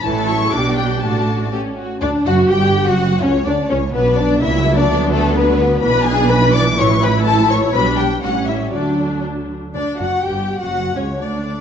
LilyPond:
<<
  \new Staff \with { instrumentName = "Violin section" } { \time 2/4 \key d \major \tempo 4 = 125 a''8 cis'''8 d'''8 g''8 | a''4 r4 | d''8 fis''8 g''8. fis''16~ | fis''8 cis''8 d''8 cis''8 |
b'8 d''8 e''8. d''16~ | d''8 a'8 b'4 | b''8 gis''8 b''8 d'''8 | cis'''8 b''8 a''8 cis'''8 |
b''8 g''8 fis''8 e''8 | d''4 r4 | d'8 fis'8 g'8. fis'16~ | fis'8 cis'8 d'4 | }
  \new Staff \with { instrumentName = "Violin section" } { \time 2/4 \key d \major <a' cis''>4 <g' d''>4 | <fis' d''>4 g'8 fis'8 | d'8 fis'8 g'8. fis'16~ | fis'8 cis'8 d'8 cis'8 |
b8 d'8 e'8. d'16~ | d'8 a8 b4 | b'8 gis'8 b'8 d''8 | cis''8 b'8 a'8 cis''8 |
b'8 g'8 fis'8 e'8 | d'4 r4 | d''8 fis''8 g''8. fis''16~ | fis''8 cis''8 d''4 | }
  \new Staff \with { instrumentName = "Viola section" } { \time 2/4 \key d \major << { e'4 d'4 | d'4 cis'8 r8 | d'8 fis'8 g'8. fis'16~ | fis'8 cis'8 d'8 cis'8 |
d'4 ais4 | b2 | d'2 | e'2 |
d'4 cis'4 | d'4. r8 | d'8 fis'8 g'8. fis'16~ | fis'8 cis'8 d'4 | } \\ { e8 fis8 g4 | a4 a8 r8 | r2 | r2 |
fis2~ | fis2 | e2~ | e2 |
g4 g4 | fis4. r8 | r2 | r2 | } >> }
  \new Staff \with { instrumentName = "Cello section" } { \clef bass \time 2/4 \key d \major a,4 b,4 | a,4. r8 | d,8 fis,8 g,8. fis,16~ | fis,8 cis,8 d,8 cis,8 |
b,4 cis4 | d2 | b,2 | a,2 |
b,4 a,4 | d4. r8 | d,8 fis,8 g,8. fis,16~ | fis,8 cis,8 d,4 | }
  \new Staff \with { instrumentName = "Double bass section" } { \clef bass \time 2/4 \key d \major a,,4 b,,4 | a,,4. r8 | d,8 fis,,8 g,,8. fis,,16~ | fis,,8 cis,8 d,8 cis,8 |
b,,4 cis,4 | d,2 | b,,2 | a,,2 |
b,,4 a,,4 | d,4. r8 | d,8 fis,,8 g,,8. fis,,16~ | fis,,8 cis,8 d,4 | }
>>